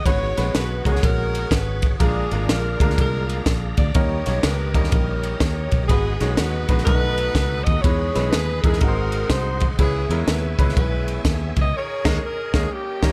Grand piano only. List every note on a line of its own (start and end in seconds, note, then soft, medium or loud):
0.06 0.81 G#2 medium
0.06 0.26 G#3 medium
0.06 0.27 B3 medium
0.06 0.26 C#4 medium
0.06 0.27 F#4 medium
0.06 0.26 B4 medium
0.37 0.65 G#3 medium
0.37 0.65 B3 medium
0.37 0.65 C#4 medium
0.37 0.65 F#4 medium
0.37 0.65 B4 medium
0.85 1.46 G#3 medium
0.85 1.46 B3 medium
0.85 1.46 C#4 medium
0.85 1.46 F#4 medium
0.85 0.90 A#4 medium
0.92 1.49 C#5 medium
2.00 2.76 A#2 medium
2.00 2.21 G#3 medium
2.00 2.21 A#3 medium
2.00 2.21 D4 medium
2.00 2.21 F4 medium
2.00 2.21 A#4 medium
2.32 2.60 G#3 medium
2.32 2.60 A#3 medium
2.32 2.60 D4 medium
2.32 2.60 F4 medium
2.32 2.60 A#4 medium
2.81 3.41 G#3 medium
2.81 3.41 A#3 medium
2.81 3.41 D4 medium
2.81 3.41 F4 medium
2.81 3.41 A#4 medium
3.95 4.71 D#3 medium
3.95 4.16 G3 medium
3.95 4.16 A#3 medium
3.95 4.16 C#4 medium
3.95 4.16 D#4 medium
3.95 4.16 A#4 medium
4.26 4.55 G3 medium
4.26 4.55 A#3 medium
4.26 4.55 C#4 medium
4.26 4.54 D#4 medium
4.26 4.55 C#5 medium
4.74 5.35 G3 medium
4.74 5.36 A#3 medium
4.74 5.36 C#4 medium
4.74 5.36 D#4 medium
4.74 5.35 A#4 medium
5.90 6.65 G#2 medium
5.90 6.11 G#3 medium
5.90 6.11 B3 medium
5.90 6.11 D#4 medium
5.90 6.11 F#4 medium
5.90 6.11 B4 medium
6.21 6.49 G#3 medium
6.21 6.49 B3 medium
6.21 6.49 D#4 medium
6.21 6.49 F#4 medium
6.21 6.49 C#5 medium
6.69 6.87 G#3 medium
6.69 6.86 B3 medium
6.69 6.87 D#4 medium
6.69 6.86 F#4 medium
6.69 6.86 B4 medium
6.87 7.63 B2 medium
6.87 7.70 A3 medium
6.87 7.71 B3 medium
6.87 6.95 D4 medium
6.87 7.70 F#4 medium
6.87 7.71 B4 medium
6.93 7.73 D#4 medium
7.84 8.60 E3 medium
7.84 8.05 G#3 medium
7.84 8.05 B3 medium
7.84 8.05 D#4 medium
7.84 8.05 E4 medium
7.84 8.05 B4 medium
8.15 8.44 G#3 medium
8.15 8.44 B3 medium
8.15 8.44 D#4 medium
8.15 8.44 E4 medium
8.15 8.44 B4 medium
8.64 8.81 G#3 medium
8.64 8.82 B3 medium
8.64 8.80 D#4 medium
8.64 8.82 E4 medium
8.64 8.81 A#4 medium
8.82 9.58 G#2 medium
8.82 9.65 G#3 medium
8.82 9.65 C4 medium
8.82 9.65 D#4 medium
8.82 9.65 F#4 medium
8.82 8.89 A#4 medium
8.88 9.68 C5 medium
9.80 10.55 C#3 medium
9.80 10.00 G#3 medium
9.80 10.00 B3 medium
9.80 10.00 C#4 medium
9.80 10.01 E4 medium
9.80 10.00 B4 medium
10.11 10.39 G#3 medium
10.11 10.39 B3 medium
10.11 10.39 C#4 medium
10.11 10.39 E4 medium
10.11 10.39 A#4 medium
10.58 11.20 G#3 medium
10.58 11.20 B3 medium
10.58 11.20 C#4 medium
10.58 10.63 D#4 medium
10.58 11.20 B4 loud
10.65 11.23 E4 medium
12.05 12.17 G#3 loud
12.05 12.17 A#3 loud
12.05 12.17 C#4 loud
12.05 12.17 D#4 loud
12.05 12.17 A#4 loud
12.54 12.66 G#3 loud
12.54 12.66 A#3 loud
12.54 12.66 C#4 loud
12.54 12.66 D#4 loud
12.54 12.66 A#4 loud
13.02 13.12 D#3 medium
13.02 13.12 G3 medium
13.02 13.12 A#3 medium
13.02 13.12 C#4 loud
13.02 13.12 D#4 medium
13.02 13.12 A#4 loud